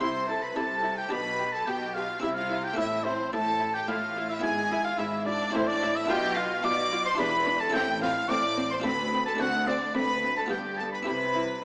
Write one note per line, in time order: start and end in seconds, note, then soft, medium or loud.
0.00 0.49 C2 medium
0.00 0.49 C3 medium
0.00 0.47 C3 medium
0.00 1.06 C4 medium
0.00 1.06 E4 medium
0.00 0.09 E4 medium
0.00 1.07 G4 medium
0.00 0.27 C5 medium
0.00 0.28 C6 loud
0.00 0.28 C6 medium
0.28 0.37 E4 medium
0.28 0.42 A4 medium
0.28 0.42 A5 medium
0.28 0.44 A5 medium
0.42 0.56 B4 medium
0.42 0.56 B5 medium
0.56 1.05 C2 medium
0.56 1.05 C3 medium
0.56 1.02 C3 medium
0.56 0.64 E4 medium
0.56 0.98 A4 medium
0.56 0.98 A5 loud
0.56 0.97 A5 medium
0.83 0.91 E4 medium
0.97 1.11 G4 medium
0.97 1.12 G5 medium
0.97 1.12 G5 loud
1.09 1.60 B1 medium
1.09 1.60 B2 medium
1.09 1.58 B2 medium
1.09 2.18 D4 medium
1.09 2.19 G4 medium
1.09 1.19 G4 medium
1.09 1.53 B4 medium
1.09 1.54 B5 medium
1.09 1.52 B5 loud
1.39 1.47 G4 medium
1.52 1.67 A4 medium
1.52 1.68 A5 medium
1.52 1.67 A5 medium
1.66 2.16 B1 medium
1.66 2.16 B2 medium
1.66 2.13 B2 medium
1.66 1.75 G4 medium
1.66 1.95 G4 medium
1.66 1.95 G5 medium
1.66 1.95 G5 loud
1.94 2.23 F4 medium
1.94 2.03 G4 medium
1.94 2.20 F5 medium
1.94 2.22 F5 loud
2.20 2.71 C2 medium
2.20 2.71 C3 medium
2.20 2.68 C3 medium
2.20 2.74 C4 medium
2.20 2.75 E4 medium
2.20 2.30 E4 medium
2.20 2.28 E4 medium
2.20 2.36 E5 medium
2.20 2.28 E5 loud
2.35 2.64 F4 medium
2.35 2.65 F5 medium
2.35 2.64 F5 medium
2.50 2.58 E4 medium
2.64 2.78 G4 medium
2.64 2.78 G5 medium
2.74 4.38 A3 medium
2.74 4.38 C4 medium
2.74 4.39 E4 medium
2.74 3.05 E5 medium
2.78 3.27 A1 medium
2.78 3.27 A2 medium
2.78 3.24 A2 medium
2.78 3.06 E4 medium
2.78 2.87 E4 medium
2.78 3.06 E5 loud
3.04 3.33 C4 medium
3.04 3.13 E4 medium
3.04 3.32 C5 medium
3.04 3.33 C5 medium
3.33 3.82 A1 medium
3.33 3.79 A2 medium
3.33 3.82 A2 medium
3.33 3.41 E4 medium
3.33 3.74 A4 loud
3.33 3.76 A5 medium
3.33 3.74 A5 loud
3.60 3.68 E4 medium
3.74 3.89 G4 medium
3.74 3.87 G5 medium
3.74 3.89 G5 medium
3.88 4.38 A1 medium
3.88 4.34 A2 medium
3.88 4.37 A2 medium
3.88 3.96 E4 medium
3.88 4.30 F4 medium
3.88 4.29 F5 medium
3.88 4.30 F5 loud
4.16 4.24 E4 medium
4.29 4.44 E4 medium
4.29 4.36 E5 medium
4.29 4.44 E5 loud
4.39 5.49 B3 medium
4.39 5.50 E4 medium
4.39 4.50 E4 medium
4.39 4.84 G#5 medium
4.43 4.93 G#1 loud
4.43 4.90 G#2 medium
4.43 4.93 G#2 medium
4.43 4.84 G#4 loud
4.43 4.84 G#5 loud
4.71 4.79 E4 medium
4.85 4.99 F4 medium
4.85 5.00 F5 medium
4.85 4.99 F5 loud
4.98 5.48 G#1 medium
4.98 5.48 G#2 medium
4.98 5.45 G#2 medium
4.98 5.06 E4 medium
4.98 5.27 E4 medium
4.98 5.26 E5 medium
4.98 5.27 E5 medium
5.26 5.54 D4 medium
5.26 5.34 E4 medium
5.26 5.54 D5 loud
5.26 5.55 D5 medium
5.50 6.06 C4 medium
5.50 6.06 E4 medium
5.50 5.62 E4 medium
5.50 5.69 C5 medium
5.50 5.68 C5 loud
5.54 6.03 A1 medium
5.54 6.03 A2 loud
5.54 6.00 A2 medium
5.54 5.68 C4 medium
5.68 5.95 D4 medium
5.68 5.97 D5 loud
5.68 5.95 D5 loud
5.82 5.90 E4 medium
5.95 6.09 E4 loud
5.95 6.09 E5 loud
5.95 6.09 E5 medium
6.05 6.58 B2 loud
6.05 7.14 B3 medium
6.05 7.14 D4 medium
6.05 7.15 F4 medium
6.05 6.17 F4 medium
6.05 6.37 G4 loud
6.05 6.37 G5 loud
6.05 6.38 G5 loud
6.10 6.58 B1 loud
6.10 6.55 B2 medium
6.36 6.64 F4 medium
6.36 6.45 F4 medium
6.36 6.64 F5 loud
6.36 6.64 F5 medium
6.63 7.13 B1 medium
6.63 7.10 B2 medium
6.63 7.13 B2 medium
6.63 6.72 F4 medium
6.63 7.04 D5 loud
6.63 7.05 D6 loud
6.92 7.00 F4 medium
7.05 7.11 C5 loud
7.05 7.19 C6 loud
7.05 7.18 C6 loud
7.15 7.68 E2 loud
7.15 7.70 D4 medium
7.15 7.70 E4 medium
7.15 7.72 G4 medium
7.15 7.59 B4 loud
7.15 7.60 B5 loud
7.19 7.68 E1 medium
7.19 7.65 E2 medium
7.19 7.27 D4 medium
7.19 7.62 B5 loud
7.46 7.54 D4 medium
7.60 7.74 A4 medium
7.60 7.74 A5 loud
7.60 7.75 A5 medium
7.70 8.79 C4 medium
7.70 8.79 E4 medium
7.70 8.80 A4 medium
7.74 8.23 A1 loud
7.74 8.23 A2 medium
7.74 8.20 A2 medium
7.74 7.83 C4 medium
7.74 7.82 G4 loud
7.74 8.01 G5 loud
8.01 8.10 C4 medium
8.01 8.09 F4 loud
8.01 8.28 F5 loud
8.01 8.31 F5 loud
8.29 8.78 A1 medium
8.29 8.78 A2 medium
8.29 8.75 A2 medium
8.29 8.38 C4 medium
8.29 8.70 D5 loud
8.29 8.70 D6 loud
8.29 8.59 D6 loud
8.57 8.65 C4 medium
8.71 8.84 C5 medium
8.71 8.84 C6 loud
8.71 8.77 C6 medium
8.80 9.34 C4 medium
8.80 9.36 F4 medium
8.80 9.37 A4 medium
8.84 9.33 D2 medium
8.84 9.30 D2 medium
8.84 8.94 C4 medium
8.84 9.26 B4 medium
8.84 9.25 B5 loud
9.13 9.21 C4 medium
9.25 9.31 A4 medium
9.25 9.42 A5 medium
9.25 9.32 A5 loud
9.35 10.45 C4 medium
9.35 10.46 D4 medium
9.35 10.47 A4 medium
9.39 9.88 D2 medium
9.39 9.85 D2 medium
9.39 9.88 D2 loud
9.39 9.48 C4 medium
9.39 9.48 F#4 loud
9.39 9.67 F#5 loud
9.39 9.69 F#5 loud
9.67 9.76 C4 medium
9.67 9.94 D4 medium
9.67 9.95 D5 loud
9.67 9.94 D5 loud
9.95 10.41 D2 medium
9.95 10.44 D2 medium
9.95 10.03 C4 medium
9.95 10.36 B4 loud
9.95 10.36 B5 loud
10.23 10.31 C4 medium
10.37 10.42 A4 medium
10.37 10.49 A5 medium
10.37 10.51 A5 medium
10.46 11.03 B3 medium
10.46 11.04 F4 medium
10.46 11.04 G4 medium
10.46 10.79 G5 medium
10.51 11.00 G1 medium
10.51 10.97 G2 medium
10.51 11.00 G2 medium
10.51 10.59 B3 medium
10.51 10.78 G4 medium
10.51 10.60 G5 medium
10.78 10.87 B3 medium
10.78 10.93 A4 medium
10.78 10.91 A5 medium
10.78 10.85 A5 loud
10.92 11.05 B4 medium
10.92 11.06 B5 medium
10.92 10.99 B5 medium
11.03 11.64 C4 medium
11.03 11.64 E4 medium
11.03 11.64 G4 medium
11.03 11.62 B4 loud
11.07 11.57 C2 medium
11.07 11.54 C3 medium
11.07 11.57 C3 medium
11.07 11.15 E4 medium
11.07 11.43 B5 medium
11.07 11.62 B5 loud
11.35 11.43 E4 medium